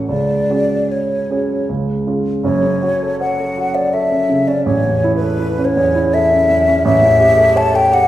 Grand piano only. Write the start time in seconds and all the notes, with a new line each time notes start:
Already playing: A1 C#4 F#4 A4
0.09 C#2
0.50 C#4 F#4 G#4
1.30 C#4 F#4 G#4
1.69 C#2
2.07 C#4 F4 G#4
2.43 F#1 F#2
2.63 C#3
2.83 F#4
3.03 A4
3.21 C#5
3.40 A4
3.58 F#4
3.75 C#5
3.94 A4
4.12 C#4
4.29 C#3
4.48 C#4
4.66 A1
4.86 E2
5.04 E4
5.22 A4
5.39 E4
5.58 C#4
5.76 E2
5.95 E4
6.14 A4
6.31 C#4
6.49 E2
6.68 C#4
6.85 A1
7.03 E2
7.20 G4
7.37 A4
7.56 C#5
7.73 A4
7.92 G4